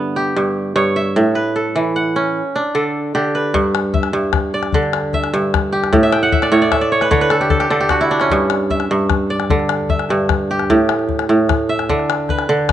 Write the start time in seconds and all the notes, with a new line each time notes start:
Already playing: G2 D3 B3 G4 A4 E5
0.16 G4
0.36 G2
0.76 G2 C#5
0.96 E5
1.16 A2
1.35 B4
1.56 A4
1.76 E3
1.96 F#5
2.16 C#4
2.56 D4
2.75 D3 A4
3.15 D3 G4
3.35 B4
3.54 G2, calabash thump
3.75 calabash click
3.94 E5, calabash thump
4.03 calabash click
4.13 G2
4.33 calabash thump, calabash click
4.54 D5
4.63 calabash click
4.72 D3, calabash thump
4.83 calabash click
4.93 calabash click
5.13 E5, calabash thump
5.24 calabash click
5.34 G2, calabash click
5.54 calabash thump, calabash click
5.72 G4
5.84 calabash click
5.93 A2, calabash thump
6.03 E5
6.12 G5, calabash click
6.23 F#5
6.32 E5, calabash thump
6.42 D5, calabash click
6.52 A2 C#5
6.62 D5
6.72 E5, calabash thump, calabash click
6.81 D5
6.92 C#5
7.01 B4, calabash click
7.11 D3 C#5, calabash thump
7.20 B4, calabash click
7.30 A4, calabash click
7.41 G4
7.50 A4, calabash thump
7.60 G4, calabash click
7.70 D3 A4, calabash click
7.80 G4
7.89 F#4, calabash thump, calabash click
8.01 E4
8.11 D4
8.20 C#4, calabash click
8.30 G2, calabash thump
8.50 calabash click
8.70 E5, calabash thump
8.80 calabash click
8.91 G2
9.10 calabash thump, calabash click
9.30 D5
9.40 calabash click
9.50 D3, calabash thump
9.59 calabash click
9.69 calabash click
9.89 E5, calabash thump
9.99 calabash click
10.09 G2, calabash click
10.29 calabash thump, calabash click
10.51 G4
10.59 calabash click
10.70 A2, calabash thump
10.89 calabash click
10.99 calabash click
11.09 calabash thump
11.19 calabash click
11.29 A2
11.49 calabash thump, calabash click
11.69 E5
11.79 calabash click
11.89 D3, calabash thump
11.99 calabash click
12.10 calabash click
12.29 B4, calabash thump, calabash click
12.39 calabash click
12.49 D3
12.69 calabash thump, calabash click